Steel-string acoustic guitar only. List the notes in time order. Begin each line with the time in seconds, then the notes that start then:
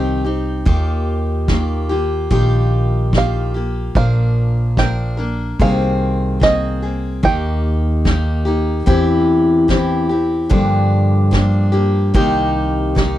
Already playing: D#3 C4 D#4 G4
0.24 C4 D#4 G4
0.65 D#3 A#3 F4 G4
1.48 D#3 A#3 F4 G4
1.89 A#3 F4 G4
2.30 D#3 A#3 F4 G4
3.13 D#3 A#3 F4 G4
3.54 A#3 F4 G4
3.95 A#2 F3 A#3 D4 A#4
4.78 F3 A#3 D4 A#4
5.17 A#3 D4 A#4
5.60 C3 D#3 A#3 C4 G#4
6.40 D#3 A#3 C4 G#4
6.82 A#3 C4 G#4
7.23 D#3 A#3 D#4 G4
8.05 D#3 A#3 D#4 G4
8.45 A#3 D#4 G4
8.86 E3 C4 E4 G4
9.68 E3 C4 E4 G4
10.09 C4 E4 G4
10.49 G2 D3 F3 A#3 D4 G4
11.31 F3 A#3 D4 G4
11.72 F3 A#3 D4 G4
12.14 C3 D#3 A#3 D#4 G4
12.95 D#3 A#3 D#4 G4